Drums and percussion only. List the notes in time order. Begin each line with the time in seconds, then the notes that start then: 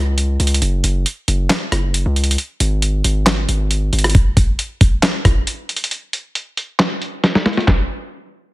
0.18 closed hi-hat
0.40 closed hi-hat
0.47 closed hi-hat
0.54 closed hi-hat
0.62 closed hi-hat
0.84 closed hi-hat
1.06 closed hi-hat
1.28 closed hi-hat
1.50 snare, clap, closed hi-hat
1.72 cross-stick, closed hi-hat
1.94 closed hi-hat
2.16 closed hi-hat
2.24 closed hi-hat
2.31 closed hi-hat
2.38 closed hi-hat
2.60 closed hi-hat
2.82 closed hi-hat
3.04 closed hi-hat
3.26 snare, clap, closed hi-hat
3.49 closed hi-hat
3.71 closed hi-hat
3.93 closed hi-hat
3.99 closed hi-hat
4.04 cross-stick, closed hi-hat
4.10 closed hi-hat
4.15 kick, closed hi-hat
4.37 kick, closed hi-hat
4.59 closed hi-hat
4.81 kick, closed hi-hat
5.03 snare, clap, closed hi-hat
5.25 kick, cross-stick, closed hi-hat
5.47 closed hi-hat
5.69 closed hi-hat
5.76 closed hi-hat
5.84 closed hi-hat
5.91 closed hi-hat
6.13 closed hi-hat
6.35 closed hi-hat
6.57 closed hi-hat
6.79 snare, clap, closed hi-hat
7.02 closed hi-hat
7.24 snare, closed hi-hat
7.35 snare
7.46 snare, closed hi-hat
7.53 closed hi-hat
7.57 snare, closed hi-hat
7.68 kick, snare, clap